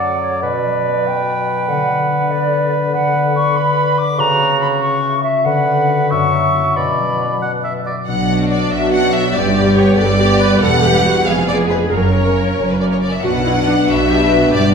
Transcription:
Already playing: F#2 F#3 A3 D4 A4 D5 F#5 A5
0.00 D5
0.21 A4 C#5
0.42 B2 B4 D5
0.64 F#3
0.86 B3
1.06 F#4 G5
1.28 D5
1.48 F#4
1.68 D3 F#5
1.90 B3
2.11 D4
2.31 B4 D5
2.53 F#5
2.73 B4
2.93 D3 B4 F#5
3.14 B3
3.35 D4 C#6
3.56 B4 B5
3.77 F#5
3.98 B4 D6
4.18 C#3 F#4 A#5
4.40 A#3
4.61 C#4 B5
4.81 F#4 C#6
5.02 E5
5.23 F#4 E5
5.45 D3 B4 F#5
5.67 D4
5.89 D4 F#4
6.10 F#2 F#3 E5 C#6
6.33 A#3
6.54 E4 F#4
6.76 B2 D5 B5
6.98 F#3
7.20 B3
7.42 F#4 F#5
7.63 D5 E5
7.85 F#4 D5
8.06 B1 B2 F#3 D4 F#5
8.28 B3 D4 F#4
8.49 F#4 D5
8.70 B1 B2 F#4 B4 E5
8.92 C#4 D4 F#4 F#5
9.13 B3 E5
9.34 G1 G2 G3 B3 G4 D5
9.56 B3 G4
9.76 G4 C#5
9.97 G1 G2 G3 B3 A4 B4 D5
10.19 B3 D4 G4
10.40 B3 B4
10.61 E1 E2 G3 B3 A4 F#5
10.83 B3 G4
11.05 E4 F#4 G4
11.26 F1 F2 G#3 B3 G#4 F5
11.48 B3 G#4 D5
11.70 D4 G#4 B4
11.91 F#1 F#2 A#3 C#4 A#4 C#5
12.14 C#4 A#4
12.36 A#4
12.57 F#1 F#2 C#5
12.69 B4
12.80 C#4 F#4 A#4 D5
12.92 C#5
13.01 C#4 D5
13.12 E5
13.23 B1 B2 B3 D4 F#4 B4 F#5
13.45 D4 E4 B4
13.67 D4 B4
13.88 B1 B2 F#4 D5 E5
14.09 D4 F#4 G4 B4
14.30 D4 F#4
14.51 G1 G2 B3 D4 G4 D5

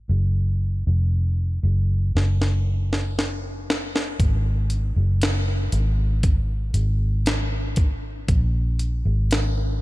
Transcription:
0.09 F#1
0.87 F1
1.63 F#1
2.15 F#1, snare
2.42 snare
2.93 snare
3.19 snare
3.70 snare
3.96 snare
4.20 G#1, kick, closed hi-hat
4.70 closed hi-hat
4.96 F#1
5.22 snare, closed hi-hat
5.72 G#1, closed hi-hat
6.23 kick, closed hi-hat
6.74 G#1, closed hi-hat
7.26 snare, closed hi-hat
7.76 kick, closed hi-hat
8.28 A#1, kick, closed hi-hat
8.79 closed hi-hat
9.05 G#1
9.31 snare, closed hi-hat

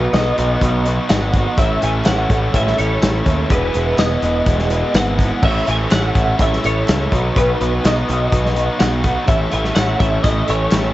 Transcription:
Already playing: B2 F#3 B3 D#4 F#4 B4 D#5 C#6
0.13 B1 B2 F#3 B3 D#4 F#4 B4 D#5, snare, clap, closed hi-hat, tambourine
0.37 B1 B2 F#3 B3 D#4 F#4, closed hi-hat
0.61 B1 B2 F#3 B3 D#4 F#4, kick, closed hi-hat
0.85 B2 F#3 B3 D#4 F#4, closed hi-hat
1.09 G#1 B2 F#3 B3 D#4 F#4 D#5 F#5, snare, clap, closed hi-hat, tambourine
1.33 B2 F#3 B3 D#4 F#4, kick, closed hi-hat
1.57 A1 A2 E3 A3 C#4 E4 A4 C#5 E5, kick, closed hi-hat
1.82 A1 A2 E3 A3 C#4 E4 E5 G#5, closed hi-hat
2.04 A1 A2 E3 A3 C#4 E4 C#5 F#5, snare, clap, closed hi-hat, tambourine
2.29 A1 A2 E3 A3 C#4 E4, kick, closed hi-hat
2.53 A1 A2 E3 A3 C#4 E4 C#5 E5, kick, closed hi-hat
2.67 snare
2.76 A1 A2 E3 A3 C#4 E4 A4 C#5, closed hi-hat
2.83 E4
3.00 A1 A2 E3 A3 C#4 E4, snare, clap, closed hi-hat, tambourine
3.25 D#2 A2 E3 A3 C#4 E4, kick, closed hi-hat
3.48 E1 E2 B2 E3 G#3 B3 E4 G#4 B4, kick, closed hi-hat
3.53 G#4 F#5
3.74 E1 E2 B2 E3 G#3 B3 E4, clap, closed hi-hat
3.97 E1 E2 B2 E3 G#3 B3 E4 B4 D#5, snare, clap, closed hi-hat, tambourine
4.20 E1 E2 B2 E3 G#3 B3 E4, closed hi-hat
4.45 E1 E2 B2 E3 G#3 B3 E4, kick, closed hi-hat
4.59 snare
4.69 E2 B2 E3 G#3 B3 E4, closed hi-hat
4.93 G#1 E2 B2 E3 G#3 B3 E4 B4 F#5, snare, clap, closed hi-hat, tambourine
5.18 E2 B2 E3 G#3 B3 E4, kick, closed hi-hat
5.42 A1 A2 E3 A3 C#4 E4 C#5 E5, kick, crash
5.46 A4 E5 C#6
5.66 A1 A2 E3 A3 C#4 E4 E5 G#5, closed hi-hat
5.90 A1 A2 E3 A3 C#4 E4 C#5 F#5, snare, clap, closed hi-hat, tambourine
6.15 A1 A2 E3 A3 C#4 E4, kick, closed hi-hat
6.39 A1 A2 E3 A3 C#4 E4 C#5 E5, kick, closed hi-hat
6.53 snare
6.63 A1 A2 E3 A3 C#4 E4 A4 C#5, closed hi-hat
6.88 C#2 A2 E3 A3 C#4 E4, snare, clap, closed hi-hat, tambourine
7.10 B1 B2 F#3 B3 B4 D#5, kick, closed hi-hat
7.14 D#4 F#4
7.35 B1 B2 F#3 B3 D#4 F#4 B4, kick, closed hi-hat
7.61 B1 B2 F#3 B3 D#4 F#4, closed hi-hat
7.84 B1 B2 F#3 B3 D#4 F#4 B4 D#5, snare, clap, closed hi-hat, tambourine
8.07 B1 B2 F#3 B3 D#4 F#4, closed hi-hat
8.32 B1 B2 F#3 B3 D#4 F#4, kick, closed hi-hat
8.46 snare
8.55 B2 F#3 B3 D#4 F#4, closed hi-hat
8.78 B1 B2 F#3 B3 D#4 F#4 D#5 F#5, snare, clap, closed hi-hat, tambourine
9.02 B2 F#3 B3 D#4 F#4, kick, closed hi-hat
9.26 A1 A2 E3 A3 C#4 E4 C#5 E5, kick, closed hi-hat
9.32 A4 E5 C#6
9.52 A1 A2 E3 A3 C#4 E4 E5 G#5, closed hi-hat
9.65 snare
9.75 A1 A2 E3 A3 C#4 E4 C#5 F#5, snare, clap, closed hi-hat, tambourine
9.97 A1 A2 A3 C#5 E5, kick, closed hi-hat
10.01 E3 C#4 E4
10.23 A1 A2 E3 A3 C#4 E4 A4 D#5, kick, closed hi-hat
10.46 A1 A2 E3 A3 C#4 E4 A4 C#5, closed hi-hat
10.71 A1 A2 E3 A3 C#4 E4, snare, clap, closed hi-hat, tambourine

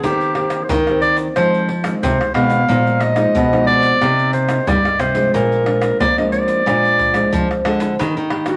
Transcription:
0.03 D#3 A#3 C4 G4, pandeiro, shaker, surdo
0.21 pandeiro, shaker
0.35 A#3 C4 G4, pandeiro, tamborim
0.50 pandeiro, tamborim, shaker
0.63 C5
0.69 D#3 A#4, pandeiro, shaker, surdo
0.87 A#3 C4 G4, pandeiro, tamborim, shaker
1.01 D5, pandeiro, shaker
1.17 pandeiro, shaker
1.36 F2 D#3 F3 G#3 C4 C5, pandeiro, tamborim, shaker, surdo
1.54 pandeiro, shaker
1.69 pandeiro
1.83 D#3 G#3 C4, pandeiro, tamborim, shaker
2.02 C3 C5, pandeiro, shaker, surdo
2.21 pandeiro, tamborim, shaker
2.34 B2 D#3 G#3 C4 F5, pandeiro, tamborim
2.50 pandeiro, shaker
2.68 A#2 F3 G#3 D#4, pandeiro, shaker, surdo
2.87 pandeiro, shaker
3.01 D#5, pandeiro, tamborim, shaker
3.16 F3 G#3 D#4, pandeiro, tamborim, shaker
3.35 F2 B2, pandeiro, shaker, surdo
3.52 F3 G#3 D#4, pandeiro, tamborim, shaker
3.67 D5, pandeiro
3.82 pandeiro, shaker
4.00 C3 A#3 D#4 G4, pandeiro, tamborim, shaker, surdo
4.19 pandeiro, shaker
4.33 C5, pandeiro, shaker
4.48 A#3 D#4 G4, pandeiro, tamborim, shaker
4.67 G2 G3 D5, pandeiro, shaker, surdo
4.85 A#3 D#4 G4, pandeiro, tamborim, shaker
4.99 C3 C5, pandeiro, tamborim, shaker
5.14 F3 G#3 D4, pandeiro, shaker
5.34 A#2 A#4, pandeiro, shaker, surdo
5.52 pandeiro, shaker
5.66 F3 G#3 D4, pandeiro, tamborim
5.82 pandeiro, tamborim, shaker
6.00 F2 A#3 D5, pandeiro, shaker, surdo
6.18 F3 G#3 D4 D#5, pandeiro, tamborim, shaker
6.32 D5, pandeiro, shaker
6.48 pandeiro, shaker
6.66 A#2 F3 G#3 D4, pandeiro, tamborim, shaker, surdo
6.85 pandeiro, shaker
6.99 pandeiro, surdo
7.13 F3 G#3 D4, pandeiro, tamborim, shaker
7.32 F2 F3, pandeiro, shaker, surdo
7.51 pandeiro, tamborim, shaker
7.65 D3 F3 G#3 D4, pandeiro, tamborim
7.80 pandeiro, shaker
7.99 D#3 A#3 D4 G4, pandeiro, low agogo, shaker, surdo
8.17 D#3, pandeiro, shaker
8.30 A#3 D4 G4, pandeiro, tamborim, low agogo
8.46 A#3 D4 F#4 G4, pandeiro, tamborim, shaker

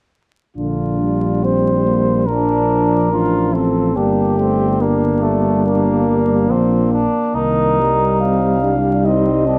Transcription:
0.57 A#1 D3 D4 F4
1.00 G3
1.43 C4 C5
1.86 A#3
2.28 F3 D4 A#4
3.12 A1 F3 D4 F4
3.54 C4 A4
3.96 G1 G3 A#3 D4 G4
4.39 A3 C4
4.81 G3 A#3 D4
5.23 A3
5.66 A#3
6.50 A#1 F3 C4
6.93 D4
7.35 C2 D#3 D#4 A#4
7.79 G3
8.21 C4 F5
8.63 D4
9.05 C4 D#4 D#5
9.46 C4 D4

